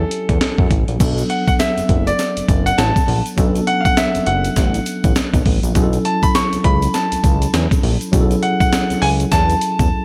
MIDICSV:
0, 0, Header, 1, 5, 480
1, 0, Start_track
1, 0, Tempo, 594059
1, 810, Time_signature, 4, 2, 24, 8
1, 8120, End_track
2, 0, Start_track
2, 0, Title_t, "Grand piano"
2, 0, Program_c, 0, 0
2, 0, Note_on_c, 0, 69, 74
2, 537, Note_off_c, 0, 69, 0
2, 1048, Note_on_c, 0, 78, 79
2, 1182, Note_off_c, 0, 78, 0
2, 1194, Note_on_c, 0, 78, 89
2, 1234, Note_off_c, 0, 78, 0
2, 1288, Note_on_c, 0, 76, 84
2, 1673, Note_on_c, 0, 74, 85
2, 1685, Note_off_c, 0, 76, 0
2, 2122, Note_off_c, 0, 74, 0
2, 2150, Note_on_c, 0, 78, 96
2, 2246, Note_on_c, 0, 81, 94
2, 2250, Note_off_c, 0, 78, 0
2, 2605, Note_off_c, 0, 81, 0
2, 2967, Note_on_c, 0, 78, 93
2, 3075, Note_on_c, 0, 77, 68
2, 3080, Note_off_c, 0, 78, 0
2, 3112, Note_on_c, 0, 78, 106
2, 3113, Note_off_c, 0, 77, 0
2, 3202, Note_off_c, 0, 78, 0
2, 3208, Note_on_c, 0, 76, 91
2, 3447, Note_on_c, 0, 78, 88
2, 3456, Note_off_c, 0, 76, 0
2, 4136, Note_off_c, 0, 78, 0
2, 4889, Note_on_c, 0, 81, 87
2, 5033, Note_on_c, 0, 83, 98
2, 5039, Note_off_c, 0, 81, 0
2, 5130, Note_on_c, 0, 85, 96
2, 5132, Note_off_c, 0, 83, 0
2, 5369, Note_on_c, 0, 83, 94
2, 5377, Note_off_c, 0, 85, 0
2, 5607, Note_on_c, 0, 81, 84
2, 5616, Note_off_c, 0, 83, 0
2, 6056, Note_off_c, 0, 81, 0
2, 6808, Note_on_c, 0, 78, 81
2, 6939, Note_off_c, 0, 78, 0
2, 6951, Note_on_c, 0, 78, 90
2, 7286, Note_on_c, 0, 80, 92
2, 7298, Note_off_c, 0, 78, 0
2, 7340, Note_off_c, 0, 80, 0
2, 7527, Note_on_c, 0, 81, 102
2, 8120, Note_off_c, 0, 81, 0
2, 8120, End_track
3, 0, Start_track
3, 0, Title_t, "Tine electric piano"
3, 0, Program_c, 1, 4
3, 0, Control_c, 1, 64, 127
3, 0, Note_on_c, 1, 54, 64
3, 0, Note_on_c, 1, 61, 56
3, 0, Note_on_c, 1, 64, 58
3, 0, Note_on_c, 1, 67, 58
3, 0, Note_on_c, 1, 80, 73
3, 773, Note_off_c, 1, 54, 0
3, 776, Note_off_c, 1, 61, 0
3, 779, Note_off_c, 1, 64, 0
3, 800, Note_on_c, 1, 54, 73
3, 807, Note_on_c, 1, 59, 75
3, 809, Note_off_c, 1, 80, 0
3, 813, Note_on_c, 1, 62, 70
3, 820, Note_on_c, 1, 69, 84
3, 822, Control_c, 1, 64, 0
3, 824, Note_off_c, 1, 67, 0
3, 983, Control_c, 1, 64, 127
3, 2693, Note_off_c, 1, 54, 0
3, 2696, Note_off_c, 1, 59, 0
3, 2699, Note_off_c, 1, 62, 0
3, 2703, Note_off_c, 1, 69, 0
3, 2719, Note_on_c, 1, 54, 73
3, 2725, Note_on_c, 1, 59, 72
3, 2731, Note_on_c, 1, 61, 60
3, 2738, Note_on_c, 1, 69, 85
3, 2784, Note_on_c, 1, 62, 67
3, 2794, Note_off_c, 1, 61, 0
3, 4612, Note_off_c, 1, 54, 0
3, 4615, Note_off_c, 1, 59, 0
3, 4622, Note_off_c, 1, 69, 0
3, 4638, Note_on_c, 1, 54, 83
3, 4645, Note_off_c, 1, 62, 0
3, 4645, Note_on_c, 1, 61, 75
3, 4651, Note_on_c, 1, 64, 76
3, 4657, Note_on_c, 1, 68, 68
3, 4660, Control_c, 1, 64, 0
3, 4710, Note_on_c, 1, 69, 88
3, 4717, Note_off_c, 1, 68, 0
3, 4787, Control_c, 1, 64, 127
3, 6531, Note_off_c, 1, 54, 0
3, 6535, Note_off_c, 1, 61, 0
3, 6538, Note_off_c, 1, 64, 0
3, 6559, Note_on_c, 1, 54, 87
3, 6566, Note_on_c, 1, 61, 72
3, 6568, Note_off_c, 1, 69, 0
3, 6573, Note_on_c, 1, 64, 77
3, 6579, Note_on_c, 1, 68, 74
3, 6631, Note_on_c, 1, 69, 88
3, 6638, Note_off_c, 1, 68, 0
3, 8120, Note_off_c, 1, 54, 0
3, 8120, Note_off_c, 1, 61, 0
3, 8120, Note_off_c, 1, 64, 0
3, 8120, Note_off_c, 1, 69, 0
3, 8120, End_track
4, 0, Start_track
4, 0, Title_t, "Analog synth bass"
4, 0, Program_c, 2, 38
4, 235, Note_on_c, 2, 40, 86
4, 309, Note_off_c, 2, 40, 0
4, 472, Note_on_c, 2, 42, 87
4, 547, Note_off_c, 2, 42, 0
4, 571, Note_on_c, 2, 33, 90
4, 683, Note_off_c, 2, 33, 0
4, 713, Note_on_c, 2, 34, 77
4, 788, Note_off_c, 2, 34, 0
4, 810, Note_on_c, 2, 35, 110
4, 996, Note_off_c, 2, 35, 0
4, 1193, Note_on_c, 2, 30, 49
4, 1231, Note_off_c, 2, 30, 0
4, 1433, Note_on_c, 2, 30, 46
4, 1472, Note_off_c, 2, 30, 0
4, 1529, Note_on_c, 2, 30, 96
4, 1715, Note_off_c, 2, 30, 0
4, 1914, Note_on_c, 2, 30, 48
4, 1952, Note_off_c, 2, 30, 0
4, 2009, Note_on_c, 2, 30, 101
4, 2195, Note_off_c, 2, 30, 0
4, 2249, Note_on_c, 2, 33, 107
4, 2361, Note_off_c, 2, 33, 0
4, 2488, Note_on_c, 2, 34, 100
4, 2601, Note_off_c, 2, 34, 0
4, 2729, Note_on_c, 2, 35, 110
4, 2915, Note_off_c, 2, 35, 0
4, 3112, Note_on_c, 2, 30, 47
4, 3151, Note_off_c, 2, 30, 0
4, 3354, Note_on_c, 2, 30, 43
4, 3393, Note_off_c, 2, 30, 0
4, 3449, Note_on_c, 2, 30, 85
4, 3635, Note_off_c, 2, 30, 0
4, 3690, Note_on_c, 2, 33, 98
4, 3876, Note_off_c, 2, 33, 0
4, 4073, Note_on_c, 2, 33, 83
4, 4148, Note_off_c, 2, 33, 0
4, 4311, Note_on_c, 2, 35, 96
4, 4386, Note_off_c, 2, 35, 0
4, 4411, Note_on_c, 2, 33, 86
4, 4522, Note_off_c, 2, 33, 0
4, 4554, Note_on_c, 2, 34, 93
4, 4628, Note_off_c, 2, 34, 0
4, 4650, Note_on_c, 2, 35, 121
4, 4836, Note_off_c, 2, 35, 0
4, 5032, Note_on_c, 2, 37, 46
4, 5071, Note_off_c, 2, 37, 0
4, 5276, Note_on_c, 2, 37, 45
4, 5314, Note_off_c, 2, 37, 0
4, 5368, Note_on_c, 2, 37, 94
4, 5555, Note_off_c, 2, 37, 0
4, 5755, Note_on_c, 2, 37, 53
4, 5793, Note_off_c, 2, 37, 0
4, 5849, Note_on_c, 2, 37, 93
4, 6035, Note_off_c, 2, 37, 0
4, 6089, Note_on_c, 2, 40, 102
4, 6201, Note_off_c, 2, 40, 0
4, 6330, Note_on_c, 2, 34, 90
4, 6442, Note_off_c, 2, 34, 0
4, 6569, Note_on_c, 2, 35, 112
4, 6755, Note_off_c, 2, 35, 0
4, 6953, Note_on_c, 2, 37, 47
4, 6991, Note_off_c, 2, 37, 0
4, 7196, Note_on_c, 2, 37, 50
4, 7233, Note_off_c, 2, 37, 0
4, 7291, Note_on_c, 2, 37, 91
4, 7476, Note_off_c, 2, 37, 0
4, 7530, Note_on_c, 2, 40, 94
4, 7715, Note_off_c, 2, 40, 0
4, 7914, Note_on_c, 2, 40, 89
4, 7988, Note_off_c, 2, 40, 0
4, 8120, End_track
5, 0, Start_track
5, 0, Title_t, "Drums"
5, 90, Note_on_c, 9, 42, 79
5, 171, Note_off_c, 9, 42, 0
5, 234, Note_on_c, 9, 36, 85
5, 235, Note_on_c, 9, 42, 60
5, 315, Note_off_c, 9, 36, 0
5, 315, Note_off_c, 9, 42, 0
5, 332, Note_on_c, 9, 38, 114
5, 333, Note_on_c, 9, 42, 71
5, 412, Note_off_c, 9, 38, 0
5, 414, Note_off_c, 9, 42, 0
5, 472, Note_on_c, 9, 36, 94
5, 553, Note_off_c, 9, 36, 0
5, 570, Note_on_c, 9, 42, 69
5, 571, Note_on_c, 9, 36, 90
5, 651, Note_off_c, 9, 36, 0
5, 651, Note_off_c, 9, 42, 0
5, 712, Note_on_c, 9, 42, 51
5, 792, Note_off_c, 9, 42, 0
5, 809, Note_on_c, 9, 36, 103
5, 809, Note_on_c, 9, 42, 71
5, 809, Note_on_c, 9, 49, 86
5, 810, Note_on_c, 9, 82, 73
5, 890, Note_off_c, 9, 36, 0
5, 890, Note_off_c, 9, 42, 0
5, 890, Note_off_c, 9, 49, 0
5, 891, Note_off_c, 9, 82, 0
5, 953, Note_on_c, 9, 42, 46
5, 953, Note_on_c, 9, 82, 48
5, 1034, Note_off_c, 9, 42, 0
5, 1034, Note_off_c, 9, 82, 0
5, 1048, Note_on_c, 9, 42, 67
5, 1129, Note_off_c, 9, 42, 0
5, 1193, Note_on_c, 9, 36, 84
5, 1193, Note_on_c, 9, 82, 52
5, 1195, Note_on_c, 9, 42, 43
5, 1273, Note_off_c, 9, 36, 0
5, 1274, Note_off_c, 9, 82, 0
5, 1276, Note_off_c, 9, 42, 0
5, 1290, Note_on_c, 9, 42, 78
5, 1290, Note_on_c, 9, 82, 65
5, 1292, Note_on_c, 9, 38, 101
5, 1370, Note_off_c, 9, 82, 0
5, 1371, Note_off_c, 9, 42, 0
5, 1373, Note_off_c, 9, 38, 0
5, 1435, Note_on_c, 9, 42, 51
5, 1436, Note_on_c, 9, 82, 46
5, 1515, Note_off_c, 9, 42, 0
5, 1517, Note_off_c, 9, 82, 0
5, 1527, Note_on_c, 9, 42, 76
5, 1528, Note_on_c, 9, 36, 97
5, 1608, Note_off_c, 9, 42, 0
5, 1609, Note_off_c, 9, 36, 0
5, 1674, Note_on_c, 9, 42, 54
5, 1674, Note_on_c, 9, 82, 48
5, 1754, Note_off_c, 9, 42, 0
5, 1755, Note_off_c, 9, 82, 0
5, 1768, Note_on_c, 9, 42, 83
5, 1769, Note_on_c, 9, 82, 71
5, 1771, Note_on_c, 9, 38, 63
5, 1849, Note_off_c, 9, 42, 0
5, 1850, Note_off_c, 9, 82, 0
5, 1851, Note_off_c, 9, 38, 0
5, 1914, Note_on_c, 9, 42, 65
5, 1917, Note_on_c, 9, 82, 43
5, 1994, Note_off_c, 9, 42, 0
5, 1998, Note_off_c, 9, 82, 0
5, 2008, Note_on_c, 9, 36, 100
5, 2009, Note_on_c, 9, 42, 80
5, 2011, Note_on_c, 9, 82, 49
5, 2089, Note_off_c, 9, 36, 0
5, 2090, Note_off_c, 9, 42, 0
5, 2092, Note_off_c, 9, 82, 0
5, 2153, Note_on_c, 9, 42, 60
5, 2155, Note_on_c, 9, 82, 52
5, 2234, Note_off_c, 9, 42, 0
5, 2236, Note_off_c, 9, 82, 0
5, 2249, Note_on_c, 9, 82, 60
5, 2250, Note_on_c, 9, 38, 116
5, 2252, Note_on_c, 9, 42, 72
5, 2330, Note_off_c, 9, 82, 0
5, 2331, Note_off_c, 9, 38, 0
5, 2332, Note_off_c, 9, 42, 0
5, 2392, Note_on_c, 9, 36, 93
5, 2395, Note_on_c, 9, 42, 54
5, 2397, Note_on_c, 9, 82, 51
5, 2472, Note_off_c, 9, 36, 0
5, 2476, Note_off_c, 9, 42, 0
5, 2478, Note_off_c, 9, 82, 0
5, 2489, Note_on_c, 9, 46, 67
5, 2570, Note_off_c, 9, 46, 0
5, 2631, Note_on_c, 9, 42, 57
5, 2637, Note_on_c, 9, 82, 60
5, 2712, Note_off_c, 9, 42, 0
5, 2718, Note_off_c, 9, 82, 0
5, 2727, Note_on_c, 9, 42, 75
5, 2729, Note_on_c, 9, 36, 112
5, 2730, Note_on_c, 9, 82, 73
5, 2808, Note_off_c, 9, 42, 0
5, 2809, Note_off_c, 9, 36, 0
5, 2810, Note_off_c, 9, 82, 0
5, 2872, Note_on_c, 9, 42, 49
5, 2874, Note_on_c, 9, 82, 45
5, 2953, Note_off_c, 9, 42, 0
5, 2954, Note_off_c, 9, 82, 0
5, 2967, Note_on_c, 9, 42, 70
5, 3048, Note_off_c, 9, 42, 0
5, 3112, Note_on_c, 9, 36, 87
5, 3113, Note_on_c, 9, 42, 45
5, 3113, Note_on_c, 9, 82, 51
5, 3193, Note_off_c, 9, 36, 0
5, 3194, Note_off_c, 9, 42, 0
5, 3194, Note_off_c, 9, 82, 0
5, 3208, Note_on_c, 9, 42, 78
5, 3209, Note_on_c, 9, 82, 67
5, 3210, Note_on_c, 9, 38, 116
5, 3289, Note_off_c, 9, 42, 0
5, 3290, Note_off_c, 9, 38, 0
5, 3290, Note_off_c, 9, 82, 0
5, 3352, Note_on_c, 9, 42, 51
5, 3355, Note_on_c, 9, 82, 47
5, 3432, Note_off_c, 9, 42, 0
5, 3436, Note_off_c, 9, 82, 0
5, 3445, Note_on_c, 9, 42, 82
5, 3526, Note_off_c, 9, 42, 0
5, 3591, Note_on_c, 9, 42, 53
5, 3593, Note_on_c, 9, 82, 44
5, 3672, Note_off_c, 9, 42, 0
5, 3674, Note_off_c, 9, 82, 0
5, 3686, Note_on_c, 9, 42, 87
5, 3687, Note_on_c, 9, 82, 71
5, 3689, Note_on_c, 9, 36, 92
5, 3689, Note_on_c, 9, 38, 64
5, 3767, Note_off_c, 9, 42, 0
5, 3768, Note_off_c, 9, 82, 0
5, 3770, Note_off_c, 9, 36, 0
5, 3770, Note_off_c, 9, 38, 0
5, 3831, Note_on_c, 9, 42, 66
5, 3835, Note_on_c, 9, 82, 44
5, 3912, Note_off_c, 9, 42, 0
5, 3916, Note_off_c, 9, 82, 0
5, 3928, Note_on_c, 9, 42, 76
5, 3928, Note_on_c, 9, 82, 52
5, 4008, Note_off_c, 9, 82, 0
5, 4009, Note_off_c, 9, 42, 0
5, 4072, Note_on_c, 9, 42, 58
5, 4073, Note_on_c, 9, 36, 93
5, 4073, Note_on_c, 9, 82, 49
5, 4153, Note_off_c, 9, 42, 0
5, 4154, Note_off_c, 9, 36, 0
5, 4154, Note_off_c, 9, 82, 0
5, 4166, Note_on_c, 9, 82, 66
5, 4169, Note_on_c, 9, 38, 109
5, 4170, Note_on_c, 9, 42, 71
5, 4247, Note_off_c, 9, 82, 0
5, 4250, Note_off_c, 9, 38, 0
5, 4251, Note_off_c, 9, 42, 0
5, 4311, Note_on_c, 9, 36, 95
5, 4314, Note_on_c, 9, 42, 55
5, 4316, Note_on_c, 9, 82, 48
5, 4392, Note_off_c, 9, 36, 0
5, 4395, Note_off_c, 9, 42, 0
5, 4397, Note_off_c, 9, 82, 0
5, 4408, Note_on_c, 9, 46, 70
5, 4410, Note_on_c, 9, 36, 92
5, 4489, Note_off_c, 9, 46, 0
5, 4491, Note_off_c, 9, 36, 0
5, 4551, Note_on_c, 9, 42, 55
5, 4555, Note_on_c, 9, 82, 60
5, 4632, Note_off_c, 9, 42, 0
5, 4636, Note_off_c, 9, 82, 0
5, 4647, Note_on_c, 9, 42, 77
5, 4648, Note_on_c, 9, 36, 97
5, 4649, Note_on_c, 9, 82, 67
5, 4728, Note_off_c, 9, 42, 0
5, 4729, Note_off_c, 9, 36, 0
5, 4730, Note_off_c, 9, 82, 0
5, 4791, Note_on_c, 9, 42, 48
5, 4792, Note_on_c, 9, 82, 47
5, 4872, Note_off_c, 9, 42, 0
5, 4873, Note_off_c, 9, 82, 0
5, 4888, Note_on_c, 9, 42, 70
5, 4969, Note_off_c, 9, 42, 0
5, 5032, Note_on_c, 9, 36, 89
5, 5032, Note_on_c, 9, 82, 52
5, 5034, Note_on_c, 9, 42, 41
5, 5113, Note_off_c, 9, 36, 0
5, 5113, Note_off_c, 9, 82, 0
5, 5115, Note_off_c, 9, 42, 0
5, 5129, Note_on_c, 9, 42, 81
5, 5130, Note_on_c, 9, 82, 70
5, 5131, Note_on_c, 9, 38, 105
5, 5210, Note_off_c, 9, 42, 0
5, 5211, Note_off_c, 9, 82, 0
5, 5212, Note_off_c, 9, 38, 0
5, 5274, Note_on_c, 9, 42, 49
5, 5276, Note_on_c, 9, 82, 46
5, 5355, Note_off_c, 9, 42, 0
5, 5356, Note_off_c, 9, 82, 0
5, 5367, Note_on_c, 9, 42, 78
5, 5368, Note_on_c, 9, 36, 94
5, 5448, Note_off_c, 9, 42, 0
5, 5449, Note_off_c, 9, 36, 0
5, 5513, Note_on_c, 9, 42, 50
5, 5513, Note_on_c, 9, 82, 52
5, 5594, Note_off_c, 9, 42, 0
5, 5594, Note_off_c, 9, 82, 0
5, 5607, Note_on_c, 9, 82, 73
5, 5608, Note_on_c, 9, 42, 75
5, 5610, Note_on_c, 9, 38, 66
5, 5688, Note_off_c, 9, 42, 0
5, 5688, Note_off_c, 9, 82, 0
5, 5691, Note_off_c, 9, 38, 0
5, 5752, Note_on_c, 9, 42, 69
5, 5757, Note_on_c, 9, 82, 43
5, 5833, Note_off_c, 9, 42, 0
5, 5837, Note_off_c, 9, 82, 0
5, 5848, Note_on_c, 9, 36, 97
5, 5848, Note_on_c, 9, 42, 75
5, 5850, Note_on_c, 9, 82, 50
5, 5928, Note_off_c, 9, 36, 0
5, 5929, Note_off_c, 9, 42, 0
5, 5931, Note_off_c, 9, 82, 0
5, 5994, Note_on_c, 9, 42, 59
5, 5997, Note_on_c, 9, 82, 49
5, 6075, Note_off_c, 9, 42, 0
5, 6078, Note_off_c, 9, 82, 0
5, 6090, Note_on_c, 9, 38, 113
5, 6090, Note_on_c, 9, 82, 66
5, 6092, Note_on_c, 9, 42, 74
5, 6171, Note_off_c, 9, 38, 0
5, 6171, Note_off_c, 9, 82, 0
5, 6172, Note_off_c, 9, 42, 0
5, 6232, Note_on_c, 9, 36, 100
5, 6235, Note_on_c, 9, 42, 52
5, 6241, Note_on_c, 9, 82, 49
5, 6312, Note_off_c, 9, 36, 0
5, 6316, Note_off_c, 9, 42, 0
5, 6322, Note_off_c, 9, 82, 0
5, 6329, Note_on_c, 9, 46, 69
5, 6410, Note_off_c, 9, 46, 0
5, 6471, Note_on_c, 9, 42, 57
5, 6478, Note_on_c, 9, 82, 62
5, 6552, Note_off_c, 9, 42, 0
5, 6559, Note_off_c, 9, 82, 0
5, 6569, Note_on_c, 9, 36, 107
5, 6569, Note_on_c, 9, 42, 76
5, 6573, Note_on_c, 9, 82, 69
5, 6650, Note_off_c, 9, 36, 0
5, 6650, Note_off_c, 9, 42, 0
5, 6653, Note_off_c, 9, 82, 0
5, 6712, Note_on_c, 9, 42, 46
5, 6716, Note_on_c, 9, 82, 48
5, 6793, Note_off_c, 9, 42, 0
5, 6797, Note_off_c, 9, 82, 0
5, 6808, Note_on_c, 9, 42, 71
5, 6889, Note_off_c, 9, 42, 0
5, 6953, Note_on_c, 9, 36, 90
5, 6955, Note_on_c, 9, 42, 45
5, 6956, Note_on_c, 9, 82, 48
5, 7033, Note_off_c, 9, 36, 0
5, 7036, Note_off_c, 9, 42, 0
5, 7037, Note_off_c, 9, 82, 0
5, 7049, Note_on_c, 9, 42, 80
5, 7051, Note_on_c, 9, 38, 114
5, 7053, Note_on_c, 9, 82, 72
5, 7130, Note_off_c, 9, 42, 0
5, 7132, Note_off_c, 9, 38, 0
5, 7134, Note_off_c, 9, 82, 0
5, 7193, Note_on_c, 9, 42, 53
5, 7198, Note_on_c, 9, 82, 47
5, 7274, Note_off_c, 9, 42, 0
5, 7279, Note_off_c, 9, 82, 0
5, 7287, Note_on_c, 9, 46, 79
5, 7368, Note_off_c, 9, 46, 0
5, 7433, Note_on_c, 9, 42, 52
5, 7436, Note_on_c, 9, 82, 45
5, 7514, Note_off_c, 9, 42, 0
5, 7517, Note_off_c, 9, 82, 0
5, 7528, Note_on_c, 9, 42, 87
5, 7529, Note_on_c, 9, 36, 94
5, 7529, Note_on_c, 9, 82, 66
5, 7530, Note_on_c, 9, 38, 66
5, 7608, Note_off_c, 9, 42, 0
5, 7610, Note_off_c, 9, 36, 0
5, 7610, Note_off_c, 9, 82, 0
5, 7611, Note_off_c, 9, 38, 0
5, 7672, Note_on_c, 9, 42, 60
5, 7678, Note_on_c, 9, 82, 41
5, 7753, Note_off_c, 9, 42, 0
5, 7759, Note_off_c, 9, 82, 0
5, 7768, Note_on_c, 9, 42, 74
5, 7773, Note_on_c, 9, 82, 53
5, 7849, Note_off_c, 9, 42, 0
5, 7854, Note_off_c, 9, 82, 0
5, 7912, Note_on_c, 9, 42, 58
5, 7913, Note_on_c, 9, 36, 95
5, 7916, Note_on_c, 9, 82, 51
5, 7993, Note_off_c, 9, 42, 0
5, 7994, Note_off_c, 9, 36, 0
5, 7997, Note_off_c, 9, 82, 0
5, 8120, End_track
0, 0, End_of_file